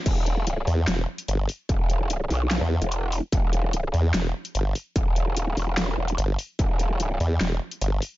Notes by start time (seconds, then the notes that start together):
0.06 E1, kick, closed hi-hat, crash
0.26 closed hi-hat
0.47 closed hi-hat
0.67 E2, open hi-hat
0.88 E1, snare, closed hi-hat
1.18 closed hi-hat
1.28 G1, closed hi-hat
1.49 open hi-hat
1.69 E1, kick, closed hi-hat
1.90 closed hi-hat
2.10 closed hi-hat
2.30 B1, open hi-hat
2.51 snare, closed hi-hat
2.61 E2
2.82 E1, closed hi-hat
2.92 closed hi-hat
3.12 open hi-hat
3.32 E1, kick, closed hi-hat
3.53 closed hi-hat
3.73 closed hi-hat
3.94 E2, open hi-hat
4.14 E1, snare, closed hi-hat
4.45 closed hi-hat
4.55 G1, closed hi-hat
4.75 open hi-hat
4.96 E1, kick, closed hi-hat
5.16 closed hi-hat
5.37 D#1, closed hi-hat
5.57 E1, open hi-hat
5.77 snare, closed hi-hat
5.98 E1
6.08 closed hi-hat
6.18 G1, closed hi-hat
6.39 open hi-hat
6.59 E1, kick, closed hi-hat
6.79 closed hi-hat
7.00 closed hi-hat
7.20 E2, open hi-hat
7.41 E1, snare, closed hi-hat
7.71 closed hi-hat
7.81 G1, closed hi-hat
8.02 open hi-hat